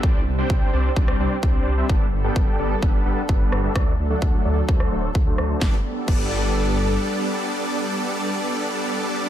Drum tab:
CC |----------------|----------------|----------------|----x-----------|
SD |---------r------|--------------r-|r--------r----r-|o---------------|
BD |o---o---o---o---|o---o---o---o---|o---o---o---o---|o---o-----------|

CC |----------------|
SD |----------------|
BD |----------------|